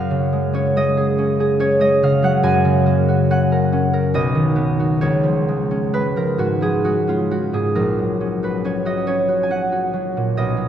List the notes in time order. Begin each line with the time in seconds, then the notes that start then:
Already playing: F#2 C#4 C#5 F5
0.11 C#3
0.33 G#3
0.53 C#4 C#5
0.76 G#3 D#5
0.97 G#4
1.18 C#4
1.40 G#4
1.60 C#4 C#5
1.79 G#3 D#5
2.03 C#3 F5
2.22 F#3 F#5
2.43 F#2 G#5
2.65 C#3
2.86 A#3
3.09 F#4
3.31 C#4 F#5
3.52 A#4
3.73 C#4
3.93 A#4
4.14 B1 D#5
4.35 D#3
4.56 B3
4.80 F#4
5.01 C#2 C#5
5.23 F3
5.48 G#3
5.71 C#4
5.93 G#3 B4
6.16 F3 A#4
6.38 G#2 F#4
6.61 F3 G#4
6.84 G#3 F#4
7.07 C#4 F4
7.31 F3 F#4
7.53 G#2 G#4
7.75 A#1 A#4
7.98 F#3
8.21 C#4
8.43 F#4 B4
8.64 C#4 C#5
8.85 F#4 D#5
9.07 C#4 C#5
9.28 F#4
9.43 G#5
9.50 C#4 F#5
9.72 F#4
9.93 F#3
10.17 A#2
10.37 B1 D#5
10.57 F#3